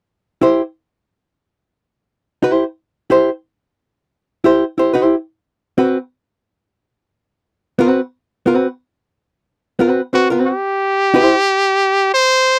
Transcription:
0.41 hollow-body jazz guitar E4 G4 C5
2.43 hollow-body jazz guitar E4 G4 C5
3.10 hollow-body jazz guitar E4 G4 C5
4.44 hollow-body jazz guitar E4 G4 C5
4.78 hollow-body jazz guitar E4 G4 C5
4.94 hollow-body jazz guitar E4 G4 C5
5.78 hollow-body jazz guitar C4 F#4 B4
7.79 hollow-body jazz guitar C4 F#4 B4
8.46 hollow-body jazz guitar C4 F#4 B4
9.79 hollow-body jazz guitar C4 F#4 B4
10.13 hollow-body jazz guitar C4 F#4 B4, trumpet F#4
10.30 hollow-body jazz guitar C4 F#4 B4
10.47 trumpet G4
11.14 hollow-body jazz guitar E4 G4 C5
12.14 trumpet C5

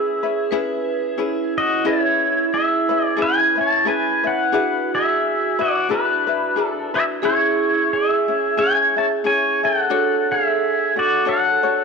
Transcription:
Already playing: ukulele C#4 E4 G#4 B4, vibraphone G#4, pedal steel guitar G#4 E5
0.23 ukulele C#4 E4 B4
0.51 ukulele C#4 E4 G#4 B4, vibraphone B4
1.18 ukulele C#4 E4 G#4 B4, vibraphone E4
1.58 pedal steel guitar F#4 D#5
1.85 ukulele C#4 E4 G#4 B4, vibraphone E4, pedal steel guitar E4 C#5
2.54 pedal steel guitar G#4 E5
2.89 ukulele C#4 E4 B4
3.05 pedal steel guitar D5
3.17 ukulele C#4 E4 G#4 B4
3.22 pedal steel guitar B4 G#5
3.56 ukulele C#4 E4 B4
3.61 pedal steel guitar C#5 A5
3.85 ukulele C#4 E4 G#4 B4, pedal steel guitar G#5
3.90 pedal steel guitar B4
4.24 ukulele C#4 E4 B4, pedal steel guitar F#5
4.28 pedal steel guitar B4
4.52 ukulele D4 E4 G#4 B4, vibraphone F#4
4.95 pedal steel guitar G#4 E5
5.59 ukulele D4 E4 B4, pedal steel guitar F#4 D5
5.89 ukulele D4 E4 G#4 B4, pedal steel guitar D4 B4
6.27 ukulele D4 E4 B4
6.56 ukulele D4 E4 G#4 B4
6.66 pedal steel guitar A4
6.94 ukulele D4 E4 B4, pedal steel guitar G#4 E5
7.22 ukulele C#4 E4 G#4, pedal steel guitar E4 C#5, vibraphone G#4
7.93 pedal steel guitar G#4 E5
8.28 ukulele C#4 E4
8.57 ukulele C#4 E4 G#4, pedal steel guitar C#5 G#5
8.96 ukulele C#4 E4, pedal steel guitar C#5 A5
9.24 ukulele C#4 E4 G#4, pedal steel guitar C#5 G#5
9.63 ukulele C#4 E4, pedal steel guitar A4 F#5
9.90 ukulele D4 F#4 C#5, vibraphone A4
10.32 pedal steel guitar G#4 E5
10.96 ukulele D4 F#4, pedal steel guitar F#4 D5
11.25 ukulele D4 F#4 A4 C#5, pedal steel guitar A4 F#5
11.63 ukulele D4 F#4 C#5

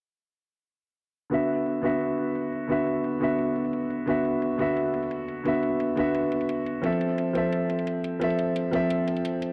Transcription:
1.30 grand piano D3 B3 F#4, closed hi-hat
1.34 grand piano E5
1.41 closed hi-hat
1.49 closed hi-hat
1.66 closed hi-hat
1.81 grand piano D3 B3 F#4 E5, closed hi-hat
2.01 closed hi-hat
2.18 closed hi-hat
2.27 closed hi-hat
2.35 closed hi-hat
2.52 closed hi-hat
2.68 grand piano D3 B3 F#4, closed hi-hat
2.72 grand piano E5
2.79 closed hi-hat
2.87 closed hi-hat
3.04 closed hi-hat
3.19 grand piano D3 B3 F#4 E5, closed hi-hat
3.39 closed hi-hat
3.56 closed hi-hat
3.65 closed hi-hat
3.73 closed hi-hat
3.90 closed hi-hat
4.06 grand piano D3 B3 F#4 E5, closed hi-hat
4.17 closed hi-hat
4.25 closed hi-hat
4.42 closed hi-hat
4.57 grand piano D3 B3 F#4 E5, closed hi-hat
4.77 closed hi-hat
4.94 closed hi-hat
5.03 closed hi-hat
5.11 closed hi-hat
5.28 closed hi-hat
5.44 grand piano D3 B3 F#4 E5, closed hi-hat
5.55 closed hi-hat
5.63 closed hi-hat
5.80 closed hi-hat
5.95 grand piano D3 B3 F#4, closed hi-hat
5.99 grand piano E5
6.15 closed hi-hat
6.32 closed hi-hat
6.41 closed hi-hat
6.49 closed hi-hat
6.66 closed hi-hat
6.82 grand piano F3 C4 A4 E5, closed hi-hat
6.93 closed hi-hat
7.01 closed hi-hat
7.18 closed hi-hat
7.33 grand piano F3 C4 A4 E5, closed hi-hat
7.53 closed hi-hat
7.70 closed hi-hat
7.79 closed hi-hat
7.87 closed hi-hat
8.04 closed hi-hat
8.20 grand piano F3 C4 A4 E5, closed hi-hat
8.30 closed hi-hat
8.39 closed hi-hat
8.56 closed hi-hat
8.71 grand piano F3 C4 A4 E5, closed hi-hat
8.90 closed hi-hat
9.08 closed hi-hat
9.17 closed hi-hat
9.25 closed hi-hat
9.42 closed hi-hat

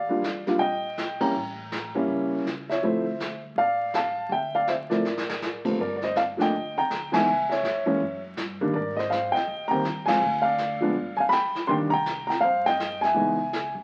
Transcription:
Already playing: upright bass D#2, upright piano D5 F5
0.09 upright piano G3 A#3 D4 F4
0.22 upright bass E2, snare, hi-hat pedal
0.47 upright piano G3 A#3 D4 F4, snare
0.59 upright bass A#1, upright piano D#5 G5, brush sweep
0.97 snare, hi-hat pedal
1.20 upright piano G3 A#3 C#4 E4 G5 A#5, kick, ride
1.34 upright bass A1, brush sweep
1.72 snare, hi-hat pedal
1.95 upright piano G3 A#3 C#4 E4
2.08 upright bass C#2, brush sweep
2.45 upright bass C#2, snare, hi-hat pedal
2.69 upright piano C#5 E5, snare
2.82 upright bass D2, upright piano F3 A3 C4 E4 C5 E5, brush sweep
3.20 snare, hi-hat pedal
3.56 upright bass A1, upright piano D5 F5, brush sweep
3.94 upright piano F5 A5, snare, hi-hat pedal
4.29 upright bass D2, upright piano E5 G5, brush sweep
4.55 upright piano D5 F5
4.67 upright piano C5 E5, snare, hi-hat pedal
4.90 upright piano F3 A3 C4 E4 A#4 D5, snare
5.04 upright bass A1, snare
5.17 snare
5.29 snare
5.42 snare, hi-hat pedal
5.64 upright bass D2, upright piano G2 F3 A3 A#3 C4, kick, crash
5.78 upright bass G1, upright piano A#4 D5, brush sweep
5.96 upright piano D5
6.02 upright piano C5 D#5, snare
6.16 upright piano D5 F5, snare, hi-hat pedal
6.37 upright piano F3 A3 A#3 D4, snare
6.41 upright piano D#5 G5
6.53 upright bass D2, brush sweep
6.78 upright piano G5 A#5
6.90 upright bass D2, snare, hi-hat pedal
7.12 upright piano E3 G#3 B3 D#4 E5 G#5, snare, ride
7.25 upright bass C#2, brush sweep
7.50 upright piano C#5 E5, snare
7.63 upright bass F2, snare, hi-hat pedal
7.86 upright piano E3 G#3 A#3 C#4
8.00 upright bass F#2, brush sweep
8.36 upright bass G2, snare, hi-hat pedal
8.61 upright piano D#3 G3 A#3 D4
8.73 upright bass G#2, upright piano A#4 D5, brush sweep
8.97 upright piano C5 D#5, snare
9.10 upright piano C5 F5, snare, hi-hat pedal
9.32 upright piano D#5 G5, kick, snare
9.47 upright bass D#2, brush sweep
9.68 upright piano D#3 G3 G5 A#5
9.72 upright piano A#3 C4
9.84 upright bass D#2, snare, hi-hat pedal
10.06 upright piano F3 G#3 C4 F4 F5 G#5, snare, ride
10.21 upright bass D2, brush sweep
10.42 upright piano D5 F5
10.58 snare, hi-hat pedal
10.80 upright piano F3 G#3 B3 D4
10.95 upright bass G1, brush sweep
11.17 upright piano F5 G#5, kick
11.29 upright piano B5, snare, hi-hat pedal
11.33 upright piano G5
11.55 snare
11.67 upright bass C2, upright piano D#3 G3 A#3 D4 G5 C6, brush sweep
11.90 upright piano G5 A#5
12.06 snare, hi-hat pedal
12.27 upright piano G5 A#5, snare
12.41 upright bass G2, upright piano C5 F5, brush sweep
12.66 upright piano D#5 G5, snare
12.80 snare, hi-hat pedal
13.01 upright piano E5 G#5, snare
13.14 upright bass C#2, upright piano E3 G#3 B3 D#4, brush sweep
13.53 snare, hi-hat pedal
13.75 upright bass E2

